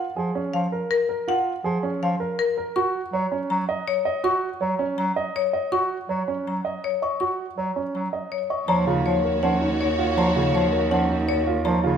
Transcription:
0.16 F3 G#4
0.35 C#4
0.54 F3 F5
0.72 A#4
0.91 A#4
1.09 A#4
1.28 F4 F#5
1.64 F3 G#4
1.83 C#4
2.02 F3 F5
2.20 A#4
2.39 A#4
2.57 A#4
2.76 F#4 C#6
3.13 F#3 C#5
3.32 C#4
3.50 F#3 A#5
3.69 D#5
3.88 C#5
4.05 D#5
4.24 F#4 C#6
4.61 F#3 C#5
4.79 C#4
4.98 F#3 A#5
5.16 D#5
5.36 C#5
5.53 D#5
5.72 F#4 C#6
6.09 F#3 C#5
6.28 C#4
6.47 F#3 A#5
6.65 D#5
6.84 C#5
7.02 D#5 C#6
7.20 F#4 C#6
7.58 F#3 C#5
7.76 C#4
7.95 F#3 A#5
8.13 D#5
8.32 C#5
8.50 D#5 C#6
8.68 D#2 F3 F#4 C#5 A#5
8.87 C#3 F4
9.06 F3 C#5
9.24 A#4
9.43 F3 C#4 F#5
9.61 D#4
9.80 C#5
9.99 F4
10.17 F3 C#5 A#5
10.36 C#3 F4
10.54 F3 C#5
10.72 A#4
10.91 F3 C#4 F#5
11.09 D#4
11.28 C#5
11.47 F4
11.65 F3 C#5 A#5
11.84 C#3 F4

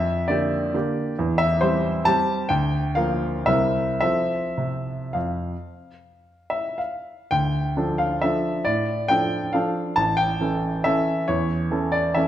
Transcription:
Already playing: F2 E5
0.28 D3 A#3 G4 D5
0.74 D3 A#3 G4
1.19 E2
1.38 E5
1.61 G3 C4 G4 C5
2.05 G3 C4 G4 A5
2.49 D2 G5
2.95 F3 A#3 A#4 F5
3.46 C2 G3 C4 A#4 E5
4.01 F3 C4 A4 E5
4.58 C3
5.13 F2 F5
6.50 E5
6.78 F5
7.31 D2 G5
7.77 F3 D4 A4
7.98 F5
8.21 F3 D4 A4 E5
8.65 A2 D5
9.08 F3 D4 A4 G5
9.53 F3 D4 A4 F5
9.96 A1 A5
10.17 G5
10.41 E3 C#4 A4
10.84 E3 C#4 A4 E5
11.28 E2 C#5
11.71 E3 C#4 A4
11.92 D5
12.14 E3 C#4 A4 E5

